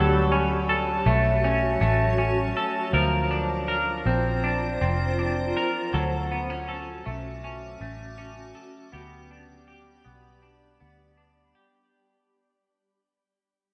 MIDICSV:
0, 0, Header, 1, 4, 480
1, 0, Start_track
1, 0, Key_signature, 2, "major"
1, 0, Tempo, 750000
1, 1875, Time_signature, 4, 2, 24, 8
1, 8790, End_track
2, 0, Start_track
2, 0, Title_t, "Ambient pad"
2, 0, Program_c, 0, 92
2, 0, Note_on_c, 0, 66, 64
2, 0, Note_on_c, 0, 73, 62
2, 0, Note_on_c, 0, 81, 57
2, 1854, Note_off_c, 0, 66, 0
2, 1854, Note_off_c, 0, 81, 0
2, 1855, Note_off_c, 0, 73, 0
2, 1883, Note_on_c, 0, 72, 61
2, 1884, Note_on_c, 0, 65, 69
2, 1884, Note_on_c, 0, 82, 60
2, 3780, Note_off_c, 0, 65, 0
2, 3780, Note_off_c, 0, 72, 0
2, 3780, Note_off_c, 0, 82, 0
2, 3792, Note_on_c, 0, 86, 78
2, 3793, Note_on_c, 0, 66, 66
2, 3794, Note_on_c, 0, 81, 64
2, 3797, Note_on_c, 0, 61, 65
2, 5695, Note_off_c, 0, 66, 0
2, 5695, Note_off_c, 0, 81, 0
2, 5697, Note_off_c, 0, 61, 0
2, 5716, Note_on_c, 0, 74, 57
2, 5718, Note_on_c, 0, 83, 60
2, 5721, Note_on_c, 0, 67, 68
2, 7608, Note_off_c, 0, 86, 0
2, 7616, Note_off_c, 0, 74, 0
2, 7617, Note_off_c, 0, 83, 0
2, 7619, Note_off_c, 0, 67, 0
2, 8790, End_track
3, 0, Start_track
3, 0, Title_t, "Clean electric guitar"
3, 0, Program_c, 1, 27
3, 0, Note_on_c, 1, 54, 65
3, 0, Note_on_c, 1, 62, 54
3, 0, Note_on_c, 1, 69, 54
3, 201, Note_off_c, 1, 62, 0
3, 203, Note_on_c, 1, 61, 49
3, 436, Note_off_c, 1, 69, 0
3, 443, Note_on_c, 1, 69, 52
3, 681, Note_on_c, 1, 57, 54
3, 916, Note_off_c, 1, 61, 0
3, 924, Note_on_c, 1, 61, 52
3, 1152, Note_off_c, 1, 57, 0
3, 1160, Note_on_c, 1, 57, 53
3, 1389, Note_off_c, 1, 61, 0
3, 1397, Note_on_c, 1, 61, 54
3, 1635, Note_off_c, 1, 69, 0
3, 1643, Note_on_c, 1, 69, 56
3, 1874, Note_off_c, 1, 54, 0
3, 1877, Note_on_c, 1, 53, 67
3, 1879, Note_off_c, 1, 69, 0
3, 1882, Note_on_c, 1, 70, 55
3, 1924, Note_off_c, 1, 61, 0
3, 1925, Note_off_c, 1, 57, 0
3, 2117, Note_on_c, 1, 62, 52
3, 2349, Note_off_c, 1, 70, 0
3, 2356, Note_on_c, 1, 70, 55
3, 2601, Note_on_c, 1, 60, 53
3, 2837, Note_off_c, 1, 62, 0
3, 2840, Note_on_c, 1, 62, 56
3, 3073, Note_off_c, 1, 60, 0
3, 3081, Note_on_c, 1, 60, 56
3, 3319, Note_off_c, 1, 62, 0
3, 3321, Note_on_c, 1, 62, 49
3, 3556, Note_off_c, 1, 70, 0
3, 3563, Note_on_c, 1, 70, 57
3, 3796, Note_off_c, 1, 53, 0
3, 3798, Note_on_c, 1, 54, 66
3, 3799, Note_off_c, 1, 70, 0
3, 3802, Note_on_c, 1, 69, 54
3, 3846, Note_off_c, 1, 60, 0
3, 4039, Note_off_c, 1, 62, 0
3, 4041, Note_on_c, 1, 59, 53
3, 4160, Note_off_c, 1, 59, 0
3, 4160, Note_on_c, 1, 61, 40
3, 4271, Note_off_c, 1, 69, 0
3, 4279, Note_on_c, 1, 69, 52
3, 4517, Note_on_c, 1, 57, 51
3, 4754, Note_off_c, 1, 61, 0
3, 4762, Note_on_c, 1, 61, 53
3, 4991, Note_off_c, 1, 57, 0
3, 4999, Note_on_c, 1, 57, 52
3, 5226, Note_off_c, 1, 61, 0
3, 5234, Note_on_c, 1, 61, 55
3, 5464, Note_off_c, 1, 69, 0
3, 5472, Note_on_c, 1, 69, 50
3, 5709, Note_off_c, 1, 57, 0
3, 5711, Note_on_c, 1, 59, 66
3, 5713, Note_off_c, 1, 69, 0
3, 5717, Note_off_c, 1, 54, 0
3, 5718, Note_on_c, 1, 67, 55
3, 5762, Note_off_c, 1, 61, 0
3, 5956, Note_on_c, 1, 62, 50
3, 6191, Note_off_c, 1, 67, 0
3, 6194, Note_on_c, 1, 67, 52
3, 6427, Note_off_c, 1, 59, 0
3, 6429, Note_on_c, 1, 59, 48
3, 6670, Note_off_c, 1, 62, 0
3, 6673, Note_on_c, 1, 62, 49
3, 6911, Note_off_c, 1, 59, 0
3, 6914, Note_on_c, 1, 59, 48
3, 7148, Note_off_c, 1, 62, 0
3, 7151, Note_on_c, 1, 62, 50
3, 7390, Note_off_c, 1, 67, 0
3, 7393, Note_on_c, 1, 67, 49
3, 8002, Note_off_c, 1, 59, 0
3, 8002, Note_off_c, 1, 62, 0
3, 8002, Note_off_c, 1, 67, 0
3, 8790, End_track
4, 0, Start_track
4, 0, Title_t, "Fingered electric bass"
4, 0, Program_c, 2, 33
4, 0, Note_on_c, 2, 38, 80
4, 651, Note_off_c, 2, 38, 0
4, 678, Note_on_c, 2, 35, 78
4, 1132, Note_off_c, 2, 35, 0
4, 1159, Note_on_c, 2, 33, 72
4, 1613, Note_off_c, 2, 33, 0
4, 1876, Note_on_c, 2, 38, 79
4, 2570, Note_off_c, 2, 38, 0
4, 2596, Note_on_c, 2, 34, 68
4, 3051, Note_off_c, 2, 34, 0
4, 3081, Note_on_c, 2, 29, 77
4, 3534, Note_off_c, 2, 29, 0
4, 3800, Note_on_c, 2, 38, 91
4, 4492, Note_off_c, 2, 38, 0
4, 4522, Note_on_c, 2, 35, 71
4, 4975, Note_off_c, 2, 35, 0
4, 4995, Note_on_c, 2, 33, 74
4, 5451, Note_off_c, 2, 33, 0
4, 5717, Note_on_c, 2, 38, 89
4, 6410, Note_off_c, 2, 38, 0
4, 6436, Note_on_c, 2, 35, 65
4, 6891, Note_off_c, 2, 35, 0
4, 6919, Note_on_c, 2, 38, 69
4, 7373, Note_off_c, 2, 38, 0
4, 8790, End_track
0, 0, End_of_file